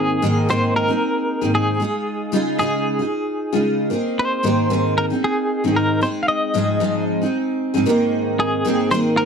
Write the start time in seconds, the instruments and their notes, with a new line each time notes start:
Already playing: steel-string acoustic guitar G#2 D#3 A#3 C4 D#4 G#4
0.00 clean electric guitar G#4
0.22 steel-string acoustic guitar G#2 D#3 A#3 C4 D#4 G#4
0.49 steel-string acoustic guitar G#2 D#3 A#3 C4 D#4 G#4, clean electric guitar C5
0.76 clean electric guitar A#4
0.88 steel-string acoustic guitar A#3 C4 D#4 G#4
1.41 steel-string acoustic guitar G#2 D#3 A#3 C4 D#4 G#4
1.55 clean electric guitar G#4
1.80 steel-string acoustic guitar G#3 D#4 F4 G#4
2.32 steel-string acoustic guitar C#3 G#3 D#4 F4 G#4
2.58 steel-string acoustic guitar C#3 G#3 D#4 F4 G#4, clean electric guitar G#4
2.99 steel-string acoustic guitar D#4 F4 G#4
3.53 steel-string acoustic guitar C#3 G#3 D#4 F4 G#4
3.90 steel-string acoustic guitar A#3 C4 D#4 G#4
4.19 clean electric guitar C5
4.43 steel-string acoustic guitar G#2 D#3 A#3 C4 D#4 G#4
4.70 steel-string acoustic guitar G#2 D#3 A#3 C4 D#4 G#4
4.98 clean electric guitar A#4
5.10 steel-string acoustic guitar A#3 C4 D#4 G#4
5.24 clean electric guitar G#4
5.64 steel-string acoustic guitar G#2 D#3 A#3 C4 D#4 G#4
5.76 clean electric guitar A#4
6.01 steel-string acoustic guitar G#3 C4 D#4 G#4, clean electric guitar C5
6.23 clean electric guitar F5
6.28 clean electric guitar D#5
6.54 steel-string acoustic guitar G#2 F3 G#3 C4 D#4 G#4
6.80 steel-string acoustic guitar G#2 F3 G#3 C4 D#4 G#4
7.22 steel-string acoustic guitar G#3 C4 D#4 G#4
7.74 steel-string acoustic guitar G#2 F3 G#3 C4 D#4 G#4
7.86 steel-string acoustic guitar G#2 D#3 A#3 C4 D#4 G#4
8.40 clean electric guitar G#4
8.65 steel-string acoustic guitar G#2 D#3 A#3 C4 D#4 G#4
8.91 steel-string acoustic guitar G#2 D#3 A#3 C4 D#4 G#4, clean electric guitar C5
9.17 clean electric guitar A#4